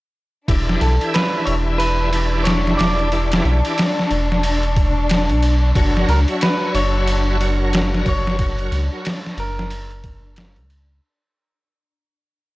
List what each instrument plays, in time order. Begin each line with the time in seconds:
0.48 sub bass E1, tonewheel organ E3 D4 E4 G4, string section D4, synth texture D4 C#6, kick, ride
0.69 snare
0.81 sub bass B1, clean electric guitar A4, ride
1.01 tonewheel organ E3 E4 G4 E5, ride
1.14 clean electric guitar B4, snare, ride
1.46 sub bass E1, clean electric guitar C#5, ride
1.78 clean electric guitar B4, ride
2.12 tonewheel organ E3 D4 E4 G4, ride
2.44 clean electric guitar C#5, snare, ride
2.67 snare
2.78 sub bass E1, clean electric guitar D5, snare, ride
2.99 ride
3.12 tonewheel organ E3 E4 G4 D5, ride
3.32 snare, ride
3.44 sub bass B1, ride
3.65 tonewheel organ E3 E4 G4 D5, ride
3.78 snare, ride
3.99 snare
4.11 sub bass E1, ride
4.32 snare
4.43 ride
4.63 ride
4.76 kick, ride
5.09 snare, ride
5.29 sub bass B1, ride
5.43 ride
5.75 sub bass F#1, tonewheel organ F#3 F#4 A#4 C#5, kick, ride
5.97 snare
6.08 sub bass C#2, clean electric guitar A#4, ride
6.28 tonewheel organ F#3 F#4 C#5 E5, ride
6.41 clean electric guitar B4, snare, ride
6.74 sub bass F#1, clean electric guitar C#5, ride
7.07 ride
7.40 tonewheel organ F#3 F#4 A#4 C#5, ride
7.73 snare, ride
7.94 snare
8.06 sub bass F#1, clean electric guitar C#5, kick, ride
8.27 snare
8.39 tonewheel organ F#3 F#4 A#4 C#5, kick, ride
8.59 ride
8.72 sub bass C#2, ride
8.92 tonewheel organ F#3 F#4 A#4 C#5
9.05 snare, ride
9.27 snare
9.37 sub bass F#1, clean electric guitar A#4, ride
9.59 snare
9.70 ride
9.90 ride
10.04 kick, ride
10.36 snare, ride
10.56 sub bass C#2, ride
10.70 ride